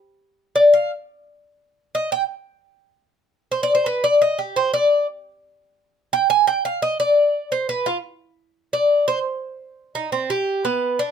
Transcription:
0.56 D5
0.73 F5
1.95 D#5
2.12 G5
3.52 C5
3.63 D5
3.75 C5
3.86 B4
4.04 D5
4.22 D#5
4.39 G4
4.56 C5
4.74 D5
6.13 G5
6.30 G#5
6.47 G5
6.65 F5
6.82 D#5
7.00 D5
7.52 C5
7.69 B4
7.86 F4
8.73 D5
9.08 C5
9.95 D#4
10.12 C4
10.30 G4
10.65 B3
10.99 D4

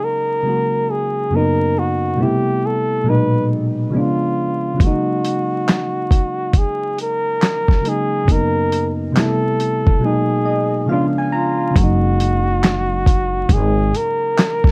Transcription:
Already playing: C#3 F#3 G#3 A#3 D#4
0.04 A#4
0.43 C#3 F#3 G#3
0.47 A#3 F#4
0.91 G#4
1.30 F#2 C#3 F#3 A#3
1.35 B3 D#4 A#4
1.79 F#4
2.16 B2 G3 A3
2.21 C3 B3 E4 G4
2.66 A4
3.04 B2 F#3 G#3
3.08 A#2 D#4 B4
3.90 C#3 F3 G#3
3.95 B3 D4 F4
4.74 C#3 F#3
4.80 G#3 A#3 F#4, kick, closed hi-hat
4.87 D#4
5.25 closed hi-hat
5.68 snare, clap, closed hi-hat
6.11 kick, closed hi-hat
6.53 kick, closed hi-hat
6.58 G#4
6.98 A#4, closed hi-hat
7.42 snare, clap, closed hi-hat
7.68 kick, snare
7.81 C#3 F#3 G#3
7.85 A#3 D#4 G#4, closed hi-hat
8.25 F#2 C#3 F#3 A#3, kick
8.29 B3 D#4 A#4, closed hi-hat
8.72 closed hi-hat
9.12 C3 G3 A3
9.16 B3 E4 A4, snare, clap, closed hi-hat
9.60 closed hi-hat
9.87 kick
9.99 B2 F#3 G#3
10.04 A#3 D#4 G#4
10.45 D#5
10.86 C#3 F3 G#3 F5
10.91 B3 D4 F4
11.18 G#5
11.32 F4 A#5
11.71 C#3 F#3
11.76 F#1 G#3 F#4, kick, closed hi-hat
11.80 A#3 D#4
12.20 closed hi-hat
12.63 snare, clap, closed hi-hat
13.06 kick, closed hi-hat
13.49 G#1 G#4, kick, closed hi-hat
13.95 A#4, closed hi-hat
14.38 snare, clap, closed hi-hat
14.64 kick, snare

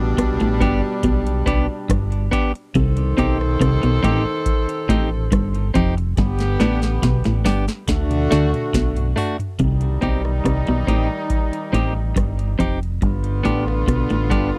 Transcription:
Already playing: A1 B2 G3 D4
0.17 B1 B2, kick, cross-stick, closed hi-hat
0.40 A1 A2, closed hi-hat
0.60 G1 G2 B3 D4 G4, kick, closed hi-hat
1.03 B1 B2, kick, closed hi-hat
1.27 closed hi-hat
1.46 B1 B2 B3 D4 G4, kick, closed hi-hat
1.89 G1 G2, kick, cross-stick, closed hi-hat
2.12 closed hi-hat
2.31 B3 D4 G4, kick, closed hi-hat
2.55 closed hi-hat
2.75 C2 C3 D#3 A4 C5, kick, closed hi-hat
2.97 closed hi-hat
3.17 B1 B2 C4 D#4 G4, kick, closed hi-hat
3.41 cross-stick
3.60 C2 C3, kick, cross-stick, closed hi-hat
3.83 B1 B2, closed hi-hat
4.03 A1 A2 C4 D#4 G4, kick, closed hi-hat
4.46 kick, closed hi-hat
4.69 closed hi-hat
4.89 A1 A2 C4 D#4 G4, kick, closed hi-hat
5.32 G1 G2, kick, cross-stick, closed hi-hat
5.55 closed hi-hat
5.74 F1 F2 C4 D#4 G4, kick, closed hi-hat
5.97 muted clean electric guitar stroke, closed hi-hat
6.17 G1 G2 D3 B3 G4, kick, snare, closed hi-hat
6.39 snare, closed hi-hat
6.60 A1 A2 B3 D4 G4, snare, closed hi-hat
6.82 snare, closed hi-hat
7.02 B1 B2, kick, snare, closed hi-hat
7.24 A1 A2, snare, closed hi-hat
7.45 G1 G2 B3 D4 G4, snare, open hi-hat
7.68 muted clean electric guitar stroke, snare, closed hi-hat
7.88 D2 D3 A3 F#4, kick, snare, closed hi-hat
8.11 closed hi-hat, mid tom
8.31 D2 D3 A3 D4 F#4, snare, closed hi-hat
8.54 closed hi-hat, mid tom
8.74 B1 B2, kick, snare, closed hi-hat
8.96 closed hi-hat, floor tom
9.16 A3 D4 F#4, floor tom, open hi-hat
9.39 closed hi-hat, floor tom
9.59 C2 C3 D#3 G3 D#4, kick, closed hi-hat
9.81 closed hi-hat
10.01 B1 B2 C4 D#4 G4, kick, closed hi-hat
10.25 cross-stick
10.44 C2 C3, kick, cross-stick, closed hi-hat
10.67 B1 B2, closed hi-hat
10.87 A1 A2 C4 D#4 G4, kick, closed hi-hat
11.30 kick, closed hi-hat
11.53 closed hi-hat
11.73 A1 A2 C4 D#4 G4, kick, closed hi-hat
11.97 muted clean electric guitar stroke
12.16 G1 G2, kick, cross-stick, closed hi-hat
12.39 closed hi-hat
12.59 F1 F2 C4 D#4 G4, kick, closed hi-hat
12.83 closed hi-hat
13.02 G1 G2 D3 B3 F4, kick, closed hi-hat
13.24 closed hi-hat
13.43 A1 A2 B3 D4 G4, kick, closed hi-hat
13.68 cross-stick
13.87 B1 B2, kick, cross-stick, closed hi-hat
14.10 A1 A2, closed hi-hat
14.30 G1 G2 B3 D4 G4, kick, closed hi-hat

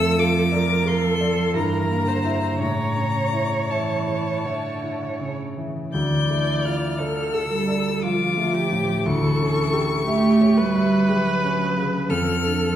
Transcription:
Already playing: F2 F3 A3 A4 E6
0.18 F4 D6
0.52 A#4 D5
0.85 A4 C6
1.04 A4
1.21 D5
1.54 G2 E3 A#4 A#5
1.90 A#3
2.05 D3 C5
2.24 E4 E5
2.58 A2 C#3 C#5 A#5
2.96 C#4
3.33 E4
3.69 E3 E5 A5
4.08 C#5
4.45 D3 E5
4.83 E4
5.20 C#3 C#4
5.57 E3
5.93 D2 E3 D5 G6
6.30 A3
6.65 F4 F6
6.99 D3 A4 D5
7.33 A4 E6
7.51 G3
7.68 D5
8.02 F3 F4 D6
8.37 A3
8.54 G4
8.72 A2
9.05 D2 E3 A4 C#6
9.40 C#4
9.73 G4
10.06 A3 G4 E5
10.41 C#5
10.57 G3 B4
10.75 E5
11.09 F#3 G4
11.43 C#4
11.77 C#3
12.10 F2 F3 A4 F6
12.45 D4

